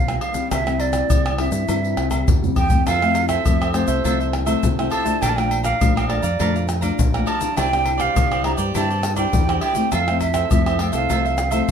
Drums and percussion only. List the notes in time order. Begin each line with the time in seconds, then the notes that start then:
0.08 pandeiro, tamborim, shaker
0.21 pandeiro, high agogo
0.34 pandeiro, shaker, surdo
0.51 pandeiro, tamborim, low agogo, shaker, surdo
0.67 pandeiro, tamborim, shaker
0.80 pandeiro, low agogo
0.93 pandeiro, tamborim, shaker, surdo
1.10 pandeiro, high agogo, shaker, surdo
1.26 pandeiro, tamborim, high agogo, shaker
1.38 pandeiro, tamborim, high agogo
1.52 pandeiro, shaker, surdo
1.69 pandeiro, low agogo, shaker, surdo
1.84 pandeiro, shaker
1.97 pandeiro, tamborim
2.11 pandeiro, tamborim, low agogo, shaker, surdo
2.28 surdo, pandeiro, shaker
2.44 surdo, pandeiro, shaker
2.56 pandeiro, high agogo, surdo
2.70 pandeiro, shaker, surdo
2.87 pandeiro, tamborim, low agogo, shaker, surdo
3.02 pandeiro, tamborim, shaker
3.15 pandeiro, low agogo, shaker
3.29 pandeiro, tamborim, shaker, surdo
3.46 pandeiro, high agogo, shaker, surdo
3.62 pandeiro, tamborim, high agogo, shaker
3.74 pandeiro, tamborim, high agogo, shaker
3.88 pandeiro, shaker, surdo
4.05 pandeiro, low agogo, shaker, surdo
4.21 pandeiro, shaker
4.33 pandeiro, tamborim
4.47 pandeiro, low agogo, shaker, surdo
4.63 pandeiro, shaker, surdo
4.79 pandeiro, tamborim, shaker
4.91 pandeiro, high agogo
5.06 pandeiro, shaker, surdo
5.22 pandeiro, tamborim, low agogo, shaker, surdo
5.38 pandeiro, tamborim, shaker
5.51 pandeiro, low agogo
5.64 pandeiro, tamborim, shaker, surdo
5.81 pandeiro, high agogo, shaker, surdo
5.97 pandeiro, tamborim, high agogo, shaker
6.10 pandeiro, tamborim, high agogo
6.23 pandeiro, shaker, surdo
6.40 pandeiro, low agogo, shaker, surdo
6.56 pandeiro, shaker
6.69 pandeiro, tamborim, shaker
6.82 pandeiro, low agogo, shaker, surdo
6.99 pandeiro, shaker, surdo
7.14 pandeiro, tamborim, shaker
7.27 pandeiro, high agogo
7.41 pandeiro, shaker, surdo
7.57 pandeiro, tamborim, low agogo, shaker, surdo
7.73 pandeiro, tamborim, shaker
7.86 pandeiro, low agogo, surdo
8.00 pandeiro, tamborim, shaker, surdo
8.16 pandeiro, high agogo, shaker, surdo
8.32 pandeiro, tamborim, high agogo, shaker
8.44 pandeiro, tamborim, high agogo
8.58 pandeiro, shaker, surdo
8.75 pandeiro, low agogo, shaker, surdo
8.91 pandeiro, shaker
9.03 pandeiro, tamborim, shaker
9.16 pandeiro, low agogo, shaker, surdo
9.33 pandeiro, shaker, surdo
9.49 pandeiro, tamborim, shaker
9.61 pandeiro, high agogo
9.75 pandeiro, shaker, surdo
9.92 pandeiro, tamborim, low agogo, shaker, surdo
10.08 pandeiro, tamborim, shaker
10.21 pandeiro, low agogo, shaker, surdo
10.34 pandeiro, tamborim, shaker, surdo
10.51 pandeiro, high agogo, shaker, surdo
10.66 pandeiro, tamborim, high agogo, shaker
10.79 pandeiro, tamborim, high agogo
10.93 pandeiro, shaker, surdo
11.10 pandeiro, low agogo, shaker, surdo
11.25 pandeiro, shaker
11.38 pandeiro, tamborim, shaker
11.52 pandeiro, low agogo, shaker, surdo